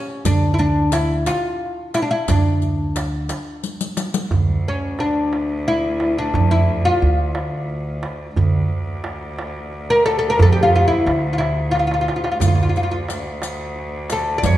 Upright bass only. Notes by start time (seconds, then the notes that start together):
0.25 D2
2.28 D2
4.32 D2
6.35 F2
7.02 D2
8.37 D2
10.39 F2
11.06 D2
12.41 D2
14.44 F2